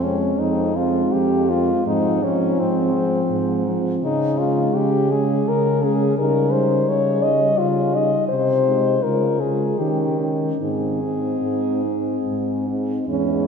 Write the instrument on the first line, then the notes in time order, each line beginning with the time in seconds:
french horn
Already playing: F2
0.03 G#3 C4 C#4
0.39 F2 D#4
0.75 G#3 C4 F4
1.13 F2 G4
1.49 G#3 C4 F4
1.86 G#2 F3 C4 D#4
2.21 F3 C4 C#4
2.59 G#2 C4
2.93 F3 C4
3.31 G#2
3.67 F3 C4
4.03 C#3 D#4
4.38 G#3 C#4 F4
4.75 C#3 G4
5.10 G#3 C#4 G#4
5.48 C#3 A#4
5.83 G#3 C#4 G#4
6.18 C#3 G3 D#4 A#4
6.52 G3 D#4 C5
6.88 C#3 C#5
7.23 G3 D#4 D#5
7.58 C#3 F4
7.94 G3 D#4 D#5
8.29 C3 C5
8.66 G#3 D#4
9.03 C#3 G#3 F4 A#4
9.40 G#3 F4 G#4
9.79 D#3 C#4 D#4 G4
10.18 C#4 D#4
10.61 G#2 C4 D#4 G#4
11.03 C4 D#4
11.44 G#2
11.85 C4 D#4
12.27 G#2
12.68 C4 D#4
13.07 E2 G#3 C#4 E4